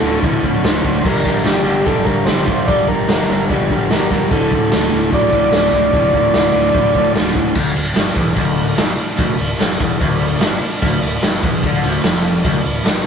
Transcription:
Already playing: A4
0.01 D1 D2 A2 D3 F4 A4 D5, tambourine
0.21 D1 D2 A2 D3 F4 A4 D5, kick, open hi-hat, tambourine
0.39 D2 F4 A4 D5
0.43 A2 D3, kick, tambourine
0.60 D1 D2 A2 F4 A4 D5, tambourine
0.64 D3 C5, snare, open hi-hat
0.81 D1 D2 A2 D3 F4 A4 D5, kick, tambourine
1.03 G1 G2 D3 G3 G4 A#4 D5, kick, crash, tambourine
1.23 G1 G2 D3 G3 G4 A#4 D5, kick, tambourine
1.44 G1 G2 D3 G3 G4 A#4 D5, snare, open hi-hat, tambourine
1.64 G1 G2 D3 G3 G4 A#4 D5, tambourine
1.85 G1 G2 D3 G3 G4 A4 A#4 D5, kick, open hi-hat
2.05 G1 G2 D3 G3 G4 A#4 D5, kick, tambourine
2.25 G1 G2 D3 G3 G4 A#4 C5, snare, open hi-hat, tambourine
2.29 E5
2.45 G1 G2 D3 G3 G4, kick, tambourine
2.49 A#4 D5
2.67 G1 G2 D3 G3 G4 A#4 D5, kick, open hi-hat, tambourine
2.87 G1 G2 D3 G3 G4 A#4 D5, kick, tambourine
3.08 G1 G2 D3 G3 G4 A#4 D5, snare, open hi-hat, tambourine
3.29 G1 G2 D3 G3 G4 A#4 D5, tambourine
3.48 G1 G2 D3 G3 G4 A#4 D5, kick, open hi-hat
3.70 G2 D3 G3 G4 A#4 F5, kick, tambourine
3.90 G1 G2 D3 G3 G4 A#4 D5, snare, open hi-hat, tambourine
4.10 G1 G2 D3 G3 G4 A#4 D5, kick, tambourine
4.31 D1 D2 A2 D3 F4 A4 D5, kick, open hi-hat, tambourine
4.51 D1 D2 A2 D3 F4 A4 D5, kick, tambourine
4.71 D1 D2 A2 D3 F4 A4 D5, snare, open hi-hat, tambourine
4.91 D1 D2 A2 D3 F4 A4 D5, tambourine
5.11 D1 D2 A2 D3 F4 A4 D5, kick, open hi-hat
5.31 D1 D2 A2 D3 F4, kick, tambourine
5.36 A4 D5
5.52 D1 D2 A2 D3 F4 A4, snare, open hi-hat, tambourine
5.57 C5
5.73 D1 D2 A2 D3 F4 A4 D5, kick, tambourine
5.93 D1 D2 A2 D3 F4 A4 D5, kick, open hi-hat, tambourine
6.14 D1 D2 A2 D3 F4 A4 D5, kick, tambourine
6.33 D1 D2 A2 D3 F4 A4 D5, snare, open hi-hat, tambourine
6.53 D1 D2 A2 D3 F4 A4
6.57 D5
6.73 D1 D2 A2 D3 F4 A4 D5, kick, open hi-hat, tambourine
6.93 D2 A2 D3 F4 A4 D5, kick, tambourine
7.13 D1 D2 A2 D3 F4 A4 D5, snare, open hi-hat, tambourine
7.34 D1 D2 A2 D3 F4 A4 D5, kick, tambourine
7.54 D1 D2 F4 A4 D5, kick, crash, tambourine
7.74 D1 D2 F4, ride, tambourine
7.78 A4 D5
7.95 G1 G2 F4, snare, ride, tambourine
7.99 A4 D5
8.15 E1 E2 F4, kick, ride, tambourine
8.20 A4 D5
8.35 D1 D2 F4 A4 D5, kick, ride
8.55 F4 A4 D5, ride, tambourine
8.76 G1 G2 F4 A4 D5, snare, ride, tambourine
8.97 F4 A4 D5, muted overdriven electric guitar stroke, muted fingered electric bass stroke, ride, tambourine
9.17 D1 D2 F4 A4 D5, kick, ride, tambourine
9.36 D1 D2 F4 A4 D5, ride, tambourine
9.58 G1 G2 F4 A4 D5, snare, ride, tambourine
9.78 E1 E2 F4 A4 D5, kick, ride, tambourine
9.99 D1 D2 F4 A4 C5, kick, ride
10.19 F4 A4 D5, ride, tambourine
10.40 G1 G2 F4 A4 D5, snare, ride, tambourine
10.61 F4 A4 D5, muted overdriven electric guitar stroke, muted fingered electric bass stroke, ride, tambourine
10.80 D1 D2 F4 A4 F5, kick, ride, tambourine
11.01 D1 D2 F4 A4 D5, ride, tambourine
11.21 G1 G2 F4 A4 D5, snare, ride, tambourine
11.40 E1 E2 F4 A4 D5, kick, ride
11.60 D2 F4 A4 D5, kick, ride
11.64 D3
11.81 D1 D2 F4 A4 C5, ride
11.85 tambourine
12.01 F1 F2 F4 A4 D5, snare, ride
12.05 tambourine
12.22 F4 A4 D5, ride, tambourine
12.43 D1 D2 F4 A4 D5, kick, ride, tambourine
12.63 D1 D2 F4 A4 D5, ride, tambourine
12.82 G1 G2 F4 A4 D5, snare, ride
12.86 tambourine
13.02 F4

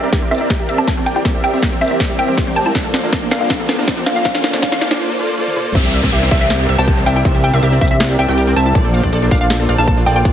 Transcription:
Already playing: E3 G3 A#3 C4 G4, riser
0.03 C2 C4 G4 A#4 D5 E5
0.12 C2 C4 G4 A#4 D5 E5, kick, snare, closed hi-hat
0.22 C4
0.31 C2 C4 G4 A#4 D5 E5, closed hi-hat
0.35 closed hi-hat
0.38 C4 E5, closed hi-hat
0.50 G4, kick, snare, closed hi-hat
0.60 G4
0.69 E5, closed hi-hat
0.78 C4 A5
0.88 G4 A5, kick, snare, closed hi-hat
0.97 C2 C4 G4 A#4 D5 G5
1.06 G5, closed hi-hat
1.16 E4 G5
1.25 C2 C4 G4 A#4 D5 E5, kick, snare, closed hi-hat
1.35 G4
1.44 E5 G5, closed hi-hat
1.53 C2 C4 G4 A#4 D5 E5
1.62 C2 C4 G4 A#4 D5 E5, kick, snare, closed hi-hat
1.72 C4
1.81 C2 C4 G4 A#4 D5 E5, closed hi-hat
1.84 closed hi-hat
1.88 C4 E5, closed hi-hat
2.00 G4, kick, snare, closed hi-hat
2.10 G4
2.19 E5 G5, closed hi-hat
2.28 C4
2.38 G4, kick, snare, closed hi-hat
2.47 C2 C4 G4 A#4 D5 G5
2.56 G5 A5, closed hi-hat
2.66 E4 A5
2.75 A#1 D3 F3 A3 A#3 D4 F4 A4 C5 D5, kick, snare, closed hi-hat
2.85 A4
2.94 F5, snare, closed hi-hat
3.03 A#1 A#3 D4 F4 A4 C5 D5
3.13 A#1 A#3 F4 A4 C5 D5, kick, snare, closed hi-hat
3.22 D4
3.31 A#1 A#3 D4 F4 A4 C5 D5 F5, snare, closed hi-hat
3.35 closed hi-hat
3.38 D4 F5, closed hi-hat
3.50 A#1 A#3 D4 F4 A4 C5 D5, kick, snare, closed hi-hat
3.60 A4
3.69 F5, snare, closed hi-hat
3.78 A#1 A#3 D4 F4 A4 C5 D5
3.87 A#1 A#3 F4 A4 C5 D5, kick, snare, closed hi-hat
3.97 D4
4.06 A#1 A#3 D4 F4 A4 C5 D5 F5, snare, closed hi-hat
4.16 D4 F5
4.25 A#1 A#3 D4 F4 A4 C5 D5 F5, kick, snare, closed hi-hat
4.35 A4 F5, snare
4.44 F5, snare, closed hi-hat
4.53 A#1 A#3 D4 F4 A4 C5 D5, snare
4.62 A#1 A#3 D4 F4 A4 C5 D5 F5, kick, snare, closed hi-hat
4.72 A4 F5, snare
4.81 F5, snare, closed hi-hat
4.85 closed hi-hat
4.88 A#1 A#3 D4 F4 A4 C5 D5, snare, closed hi-hat
5.00 A#3 F4 A4 C5 D5
5.19 A#3 F4 A4 C5 D5
5.38 A#3 F4 A4 C5 D5
5.47 high tom
5.56 A#3 F4 A4 C5 D5, mid tom
5.66 mid tom
5.75 C2 C4 G4 A#4 D5 E5, kick, closed hi-hat, crash, downlifter
5.85 G4
5.94 E5, closed hi-hat
6.03 C2 C4 G4 A#4 D5 E5, kick
6.13 C2 C4 G4 A#4 D5 E5, closed hi-hat
6.22 C4
6.31 C2 C4 G4 A#4 D5 E5, kick, closed hi-hat
6.35 closed hi-hat
6.38 C4 E5, closed hi-hat
6.50 G4, snare, closed hi-hat
6.60 G4
6.69 C2 C4 G4 A#4 D5 E5, closed hi-hat
6.78 C2 C4 G4 A#4 D5 G5 A5
6.88 G4 A5, kick, closed hi-hat
6.97 C4
7.06 C2 C4 G4 A#4 D5 E5 G5, open hi-hat
7.16 E4 G5
7.25 C2 C4 G4 A#4 D5 E5, kick, closed hi-hat
7.35 G4
7.44 E5 G5, closed hi-hat
7.53 C2 C4 G4 A#4 D5 E5
7.63 C2 C4 G4 A#4 D5 E5, closed hi-hat
7.72 C4
7.81 C2 C4 G4 A#4 D5 E5, kick, closed hi-hat
7.85 closed hi-hat
7.88 C4 E5, closed hi-hat
8.00 G4, snare, closed hi-hat
8.10 G4
8.19 C2 C4 G4 A#4 D5 E5 G5, closed hi-hat
8.28 C2 C4 G4 A#4 D5 G5
8.37 G4, closed hi-hat
8.47 C4
8.56 C2 C4 G4 A#4 D5 E5 G5 A5, open hi-hat
8.66 E4 A5
8.75 A#1 A#3 D4 F4 A4 C5 D5, kick, closed hi-hat
8.85 A4
8.94 F5, closed hi-hat
9.03 A#1 A#3 D4 F4 A4 C5 D5, kick
9.13 A#1 A#3 F4 A4 C5 D5, closed hi-hat
9.22 D4
9.31 A#1 A#3 D4 F4 A4 C5 D5 F5, kick, closed hi-hat
9.35 closed hi-hat
9.38 D4 F5, closed hi-hat
9.50 A4, snare, closed hi-hat
9.60 A4
9.69 A#1 A#3 F4 A4 C5 D5 F5, closed hi-hat
9.78 A#1 A#3 D4 F4 A4 C5 F5 A5
9.87 A4 A5, kick, closed hi-hat
9.97 D4
10.06 A#1 A#3 F4 A4 C5 D5 G5 A5, open hi-hat
10.16 F4 G5
10.25 A#1 A#3 D4 F4 A4 C5 D5, kick, closed hi-hat

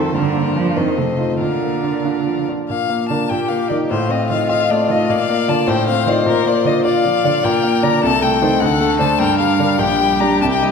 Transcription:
Already playing: F2 D#3 C4 F4 A4 C5
0.14 G2 D3 A#4
0.34 A#3
0.55 F3 D4 A#4
0.76 F2 D#3 C5 D#5
0.98 C3 A3
1.18 D#4 F4
1.40 A#2 D3 A#4 F5
1.63 A#3
1.83 D4 F4
2.05 D4 F4
2.27 F3
2.49 D4 F4
2.69 A#2 F5
2.90 A#3
3.09 D3 D4 A#4 A5
3.30 A#2 G4 G5
3.48 A#3 F5
3.69 D#3 D#4 A#4 D5
3.90 A2 F4 C5
4.09 C4 D#5
4.30 D#3 F4 D#5 F5
4.49 F4 D#5 F5
4.70 A3 D5
4.89 D#3 F4 D#5
5.09 A#2 D5 F5
5.29 A#3
5.48 D3 F4 D5 A5
5.67 A2 C5 G5
5.87 C4 F5
6.06 D#3 F4 D5 D#5
6.26 A#2 A#4
6.46 A#3 D5
6.65 D3 F4 D5 D#5
6.85 F4 D5 F5
7.05 F3
7.24 D3 F4 D5
7.44 A#2 A#4 G5
7.64 A#3
7.83 D3 D4 D5 A#5
8.03 C2 A4 A5
8.22 A3 G5
8.42 D#3 D#4 C5
8.60 D2 A4 F#5
8.80 A3
8.99 D3 D4 C5 A5
9.19 G2 A#4 G5
9.39 G3 F5
9.59 D3 D4 A#4
9.79 A#1 G4 G5
10.00 G3
10.20 G3 D4 G4 A#5
10.41 C2 A5
10.53 G5
10.63 G3 D#5

